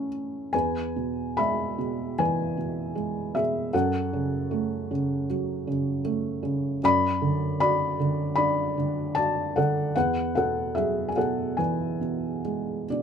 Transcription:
0.00 0.49 A2 medium
0.00 0.51 C#4 medium
0.00 0.49 E4 medium
0.53 3.70 E2 soft
0.53 1.34 B4 medium
0.53 1.40 G#5 medium
0.96 1.77 B2 soft
1.37 2.92 G#3 soft
1.37 2.15 E5 medium
1.37 2.21 B5 medium
1.78 2.56 B2 soft
2.19 3.70 E3 soft
2.19 3.32 B4 medium
2.19 3.38 G#5 medium
2.57 3.34 B2 soft
2.95 3.71 G#3 soft
3.35 3.73 B2 soft
3.35 3.72 G#4 soft
3.35 3.75 E5 medium
3.73 6.79 F#2 medium
3.73 5.26 A4 medium
3.73 5.25 F#5 medium
4.13 4.89 C#3 soft
4.51 6.01 A3 medium
4.91 5.66 C#3 soft
5.30 6.79 F#3 medium
5.67 6.41 C#3 medium
6.05 6.80 A3 medium
6.43 6.81 C#3 soft
6.83 9.91 F#2 medium
6.83 7.56 D5 medium
6.83 7.59 B5 loud
7.22 7.98 D3 medium
7.60 9.12 F#4 medium
7.60 8.33 D5 medium
7.60 8.34 B5 medium
8.00 8.76 D3 soft
8.36 9.92 D4 medium
8.36 9.11 D5 medium
8.36 9.17 B5 medium
8.78 9.55 D3 soft
9.15 9.93 F#4 soft
9.15 9.53 D5 medium
9.15 9.56 A5 medium
9.56 9.94 D3 soft
9.56 9.94 A4 medium
9.56 9.94 F#5 medium
9.96 13.02 E2 medium
9.96 10.33 B4 medium
9.96 10.34 F#5 medium
10.35 11.16 B2 soft
10.35 10.74 A4 medium
10.35 10.72 F#5 medium
10.75 12.41 F#3 soft
10.75 11.07 G#4 soft
10.75 11.10 E5 medium
11.08 11.16 G#5 soft
11.16 11.99 B2 soft
11.16 11.55 A4 soft
11.16 11.59 F#5 medium
11.57 13.02 E3 soft
11.57 12.87 B4 soft
11.57 12.85 G#5 medium
12.01 12.88 B2 soft
12.45 13.02 G#3 soft
12.90 13.02 B2 soft
12.90 13.02 D4 soft
12.90 13.02 D5 medium

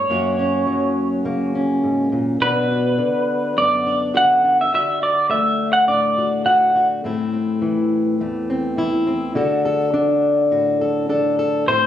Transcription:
0.00 0.10 E4 soft
0.00 2.09 C#5 medium
0.10 1.83 F#2 medium
0.10 1.24 A#3 soft
0.10 0.38 C#4 soft
0.10 2.42 F#4 medium
0.39 1.54 C#4 soft
0.67 2.98 F#3 soft
1.25 2.12 C#3 soft
1.25 2.38 A#3 soft
1.55 2.38 C#4 soft
1.83 2.12 G#2 soft
2.12 2.40 A#2 soft
2.40 2.99 B2 medium
2.40 3.56 B3 soft
2.40 2.70 D4 soft
2.40 4.13 F#4 medium
2.40 3.57 B4 medium
2.70 3.85 D4 soft
2.98 4.13 D3 medium
3.56 4.69 F#2 soft
3.56 4.69 B3 soft
3.56 4.11 D5 medium
3.87 4.43 D4 soft
4.14 4.72 D3 medium
4.14 4.69 F#4 medium
4.14 4.56 F#5 medium
4.44 4.70 D4 soft
4.61 4.73 E5 medium
4.73 7.04 D3 medium
4.73 5.88 D4 medium
4.73 5.01 F#4 medium
4.73 5.03 E5 medium
5.02 6.17 F#4 soft
5.02 5.29 D5 medium
5.30 6.45 A3 medium
5.30 5.72 E5 medium
5.73 5.88 F#5 medium
5.88 7.03 A2 medium
5.88 7.01 D4 medium
5.88 6.45 D5 medium
6.18 6.45 F#4 soft
6.46 7.04 A3 medium
6.46 6.75 F#4 medium
6.46 6.86 F#5 medium
6.76 7.01 F#4 medium
7.04 8.20 A2 medium
7.04 8.21 A3 medium
7.04 7.32 C4 medium
7.04 8.78 E4 medium
7.33 8.49 C4 soft
7.62 8.77 E3 medium
8.20 9.36 E2 medium
8.20 9.93 A3 soft
8.50 9.06 C4 soft
8.77 9.35 E3 soft
8.77 9.37 E4 medium
9.07 9.32 C4 medium
9.35 11.67 D3 medium
9.35 10.51 F#4 medium
9.35 9.65 A4 medium
9.65 10.81 A4 medium
9.94 11.08 D4 medium
10.51 11.63 A2 medium
10.51 11.64 F#4 soft
10.81 11.10 A4 medium
11.09 11.64 D4 medium
11.09 11.39 A4 medium
11.39 11.69 A4 medium
11.67 11.87 A2 medium
11.67 11.87 C4 medium
11.67 11.87 E4 medium
11.67 11.87 A4 medium
11.67 11.87 C5 medium

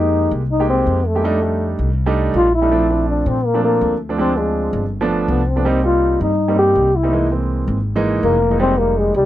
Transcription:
0.00 0.26 F2 medium
0.00 0.40 G#3 medium
0.00 0.40 A#3 medium
0.00 0.32 D#4 loud
0.00 0.41 D#4 medium
0.00 0.41 G4 medium
0.31 0.83 C2 medium
0.51 0.68 D#4 medium
0.60 0.98 G#3 medium
0.60 0.98 A#3 medium
0.60 0.99 D#4 medium
0.60 0.99 G4 medium
0.70 1.08 C4 medium
0.87 1.73 F2 medium
1.06 1.80 A3 medium
1.15 1.21 G#3 medium
1.15 1.22 A#3 medium
1.15 1.22 D#4 medium
1.15 1.22 G4 medium
1.24 1.37 G3 medium
1.24 1.37 A3 medium
1.24 1.37 D4 medium
1.24 1.38 D#4 loud
1.42 1.88 G3 medium
1.42 1.88 A3 medium
1.42 1.88 D4 medium
1.42 1.88 D#4 medium
1.79 2.30 C2 medium
2.06 2.45 G3 medium
2.06 2.45 A3 medium
2.06 2.46 D4 medium
2.06 2.46 D#4 loud
2.34 3.20 A#1 medium
2.34 2.53 F4 loud
2.55 3.05 E4 loud
2.62 2.68 G3 medium
2.62 2.69 A3 medium
2.62 2.69 D4 medium
2.62 2.69 D#4 medium
2.71 2.84 F3 medium
2.71 2.84 A3 medium
2.71 2.85 C4 medium
2.71 2.85 D4 medium
2.90 3.35 F3 medium
2.90 3.35 A3 medium
2.90 3.35 C4 medium
2.90 3.35 D4 medium
3.09 3.29 D4 medium
3.26 3.78 A#2 medium
3.26 3.48 C4 medium
3.46 3.64 A#3 medium
3.54 3.93 F3 medium
3.54 3.93 A3 medium
3.54 3.93 C4 medium
3.54 3.93 D4 medium
3.64 3.98 A#3 medium
3.81 4.68 D2 medium
4.09 4.16 F3 medium
4.09 4.16 A3 medium
4.09 4.16 C4 medium
4.09 4.16 D4 medium
4.18 4.31 F3 medium
4.18 4.32 G#3 medium
4.18 4.32 C4 medium
4.18 4.39 C4 loud
4.18 4.32 D4 medium
4.37 4.82 F3 medium
4.37 4.92 G#3 medium
4.37 4.82 G#3 medium
4.37 4.82 C4 medium
4.37 4.83 D4 medium
4.73 5.25 G1 medium
5.01 5.40 F3 loud
5.01 5.40 A3 medium
5.01 5.40 B3 medium
5.01 5.40 D4 loud
5.28 6.15 C2 medium
5.28 5.49 B3 medium
5.48 5.85 C4 medium
5.56 5.63 F3 medium
5.56 5.63 A3 medium
5.56 5.63 B3 medium
5.56 5.63 D4 medium
5.65 5.78 G3 medium
5.65 5.79 A#3 medium
5.65 5.79 C4 medium
5.65 5.79 D#4 loud
5.84 6.29 G3 medium
5.84 6.29 A#3 medium
5.84 6.29 C4 medium
5.84 6.29 D#4 medium
5.84 6.19 F4 medium
6.21 6.72 G2 medium
6.21 6.56 D#4 medium
6.48 6.87 G3 medium
6.48 6.87 A#3 medium
6.48 6.87 C4 medium
6.48 6.87 D#4 medium
6.58 6.97 G4 loud
6.75 7.62 C2 medium
6.96 7.32 E4 medium
7.03 7.10 G3 medium
7.03 7.10 A#3 medium
7.03 7.10 C4 medium
7.03 7.10 D#4 medium
7.12 7.26 E3 medium
7.12 7.26 G#3 medium
7.12 7.26 A#3 medium
7.12 7.26 D#4 medium
7.31 7.76 E3 medium
7.31 7.76 G#3 medium
7.31 7.76 A#3 medium
7.31 7.77 C4 medium
7.68 8.19 G#1 medium
7.95 8.34 E3 medium
7.95 8.34 G#3 medium
7.95 8.34 A#3 medium
7.95 8.35 D#4 loud
8.23 9.09 F1 medium
8.23 8.58 A#3 loud
8.50 8.57 E3 medium
8.50 8.57 G#3 medium
8.50 8.57 A#3 medium
8.50 8.58 D#4 medium
8.59 8.73 G3 medium
8.59 8.73 G#3 medium
8.59 8.73 A#3 medium
8.59 8.81 C4 loud
8.59 8.73 D#4 medium
8.78 9.23 G3 medium
8.78 9.23 G#3 medium
8.78 9.23 A#3 medium
8.78 8.99 A#3 medium
8.78 9.24 D#4 medium
8.98 9.16 G#3 medium
9.14 9.25 C2 medium
9.14 9.25 G3 medium

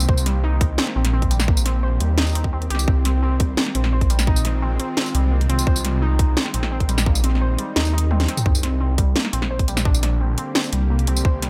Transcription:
0.00 8.42 D#3 medium
0.00 2.84 A#3 medium
0.00 8.42 C4 medium
0.00 2.84 G4 medium
0.00 tambourine medium
0.09 0.77 C2 medium
0.09 0.25 C5 medium
0.09 kick loud
0.17 tambourine medium
0.26 0.36 G3 medium
0.26 snare soft
0.26 closed hi-hat medium
0.44 0.59 D#4 loud
0.61 0.78 D#4 medium
0.61 kick loud
0.61 closed hi-hat medium
0.78 0.94 C4 medium
0.78 snare loud
0.87 snare soft
0.96 1.99 A#1 loud
0.96 1.06 C4 loud
1.05 snare soft
1.05 closed hi-hat medium
1.13 1.30 C4 loud
1.22 kick medium
1.22 closed hi-hat soft
1.31 1.47 G3 medium
1.31 closed hi-hat medium
1.31 tambourine soft
1.40 snare medium
1.40 tambourine medium
1.48 1.58 A#3 medium
1.48 kick loud
1.57 tambourine medium
1.66 1.82 C4 loud
1.66 snare soft
1.66 closed hi-hat medium
1.83 2.00 C5 medium
2.00 2.69 D#2 medium
2.00 2.11 G3 medium
2.00 closed hi-hat medium
2.18 2.34 D#4 loud
2.18 snare loud
2.27 tambourine soft
2.29 tambourine soft
2.33 2.46 C4 medium
2.33 closed hi-hat medium
2.33 tambourine soft
2.44 kick medium
2.53 2.63 C4 medium
2.62 closed hi-hat soft
2.70 2.87 C2 loud
2.70 2.87 G4 loud
2.70 closed hi-hat medium
2.75 snare soft
2.79 tambourine medium
2.88 3.56 C2 medium
2.88 8.42 G#3 medium
2.88 3.04 C4 medium
2.88 5.65 F4 medium
2.88 kick loud
3.05 3.15 C4 loud
3.05 snare soft
3.05 closed hi-hat medium
3.23 3.39 C4 loud
3.40 3.56 G3 medium
3.40 kick loud
3.40 closed hi-hat medium
3.57 3.68 A#3 medium
3.57 snare loud
3.66 snare medium
3.75 4.78 A#1 loud
3.75 3.92 C4 medium
3.75 closed hi-hat medium
3.84 snare medium
3.93 4.09 C5 medium
4.01 kick medium
4.01 closed hi-hat soft
4.10 4.20 G3 medium
4.10 closed hi-hat medium
4.10 tambourine soft
4.19 snare medium
4.19 tambourine medium
4.27 4.43 D#4 loud
4.27 kick loud
4.36 tambourine medium
4.45 4.61 D#4 medium
4.45 snare soft
4.45 closed hi-hat medium
4.62 4.78 C4 medium
4.80 4.90 C4 loud
4.80 closed hi-hat medium
4.97 5.14 C4 loud
4.97 snare loud
5.06 tambourine soft
5.15 5.48 C2 loud
5.15 5.30 G3 medium
5.15 closed hi-hat medium
5.32 5.42 A#3 medium
5.41 closed hi-hat soft
5.49 5.65 C2 loud
5.49 5.66 C4 loud
5.49 closed hi-hat medium
5.59 tambourine medium
5.67 6.35 C2 loud
5.67 8.43 D#4 medium
5.67 5.84 C5 medium
5.67 kick loud
5.76 tambourine medium
5.84 5.95 G3 medium
5.84 snare soft
5.84 closed hi-hat medium
6.02 6.18 D#4 loud
6.19 6.36 D#4 medium
6.19 kick loud
6.19 closed hi-hat medium
6.37 6.52 C4 medium
6.37 snare loud
6.46 snare medium
6.54 7.57 A#1 loud
6.54 6.64 C4 medium
6.54 closed hi-hat medium
6.63 snare medium
6.72 6.88 C4 loud
6.80 kick medium
6.80 closed hi-hat soft
6.89 7.05 G3 medium
6.89 closed hi-hat medium
6.89 tambourine soft
6.98 snare medium
6.98 tambourine medium
7.06 7.17 A#3 medium
7.06 kick loud
7.15 tambourine medium
7.24 7.41 C4 loud
7.24 snare soft
7.24 closed hi-hat medium
7.30 snare soft
7.35 snare soft
7.41 7.58 C5 medium
7.58 7.69 G3 medium
7.58 closed hi-hat medium
7.76 8.27 D#2 medium
7.76 7.92 D#4 loud
7.76 snare loud
7.85 tambourine soft
7.94 8.10 D#4 medium
7.98 closed hi-hat medium
8.11 8.27 C4 medium
8.11 high tom medium
8.20 snare medium
8.20 closed hi-hat soft
8.28 8.39 C4 loud
8.28 snare soft
8.28 closed hi-hat medium
8.37 mid tom medium
8.37 tambourine medium
8.46 9.14 C2 loud
8.46 11.50 D3 medium
8.46 11.50 G3 medium
8.46 11.50 A#3 medium
8.46 8.62 C4 medium
8.46 11.50 G4 medium
8.46 kick loud
8.55 tambourine medium
8.63 8.73 C4 medium
8.63 snare soft
8.63 closed hi-hat medium
8.81 8.97 C4 loud
8.98 9.14 G3 medium
8.98 kick loud
8.98 closed hi-hat medium
9.16 9.26 A#3 medium
9.16 snare loud
9.25 snare medium
9.33 10.37 A#1 medium
9.33 9.50 C4 loud
9.33 closed hi-hat medium
9.42 snare medium
9.51 9.67 C5 medium
9.59 kick medium
9.59 closed hi-hat soft
9.68 9.78 G3 medium
9.68 closed hi-hat medium
9.68 tambourine soft
9.77 snare medium
9.77 tambourine medium
9.85 10.01 D4 loud
9.85 kick loud
9.94 tambourine medium
10.03 10.20 D4 medium
10.03 snare soft
10.03 closed hi-hat medium
10.21 10.36 C4 medium
10.38 10.48 C4 loud
10.38 closed hi-hat medium
10.55 10.72 C4 loud
10.55 snare loud
10.64 tambourine soft
10.73 11.06 C2 medium
10.73 10.89 G3 medium
10.73 closed hi-hat medium
10.90 11.00 A#3 medium
10.99 closed hi-hat soft
11.07 11.24 C2 loud
11.07 11.24 C4 loud
11.07 closed hi-hat medium
11.16 tambourine medium
11.25 11.50 C2 loud
11.25 11.42 C5 medium
11.25 kick loud
11.42 11.50 G3 medium
11.42 snare soft
11.42 closed hi-hat medium

